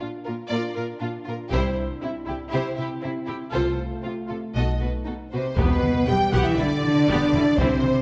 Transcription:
Already playing: D4 F4
0.01 A#2 D4 F4
0.24 A#2 F4 A#4
0.48 A#2 F4 A#4 D5
0.75 A#2 F4 A#4
0.99 A#2 D4 F4
1.25 A#2 F4 A#4
1.50 C2 C3 E4 G4 C5, taiko
2.02 C3 C4 E4
2.26 C3 E4 G4, taiko
2.51 C3 C4 E4 G4 C5
2.75 C3 E4
2.80 G4
3.02 C3 C4 E4
3.26 C3 E4 G4
3.52 C2 C3 A3 F4 A4 C5
4.02 C3 C4 F4
4.28 C3 F4 A4
4.54 B1 B2 D#4 F#4 A4 D#5
4.79 B2 F#4 B4
5.05 B2 D#4 F#4 A4
5.32 B2 C3 C4 F#4 B4 C5
5.57 E1 E2 B2 B3 G4 B4, taiko
5.84 taiko mid
6.07 E1 E3 G3 B3 G4 G5
6.33 E1 F#3 B3 F#4 G4 F#5, taiko
6.44 E3 E4 E5
6.58 E1 D3 G3 D4 E4 D5
6.84 taiko mid
7.09 E1 B3 G4
7.34 E1 G3 E4, taiko mid
7.57 C2 C3 C4 E4 C5, taiko
7.83 taiko mid

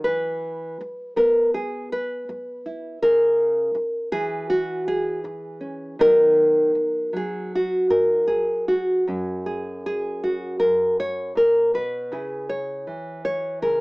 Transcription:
0.04 E3 B4
0.81 muted nylon-string guitar stroke
1.16 B3 A#4
1.54 G#4
1.92 B4
2.29 muted nylon-string guitar stroke
2.66 E4
3.02 C#3 A#4
3.75 muted nylon-string guitar stroke
4.12 E3 G#4
4.50 F#4
4.88 G#4
5.24 muted nylon-string guitar stroke
5.61 C#4
5.99 D#3 F#3 B3 D#4 A#4
6.75 muted nylon-string guitar stroke
7.13 F#3 G#4
7.55 F#4
7.90 D#4 A#4
8.28 G#4, muted nylon-string guitar stroke
8.68 F#4
9.07 F#2 C#4
9.46 G#4
9.86 G#4
10.24 F#4
10.60 F#2 A#4
11.00 C#5
11.35 A#2 A#4
11.74 B2 B4
12.12 C#3 E4 G#4
12.49 C#5
12.87 E3
13.25 C#5
13.62 C#3 A#4

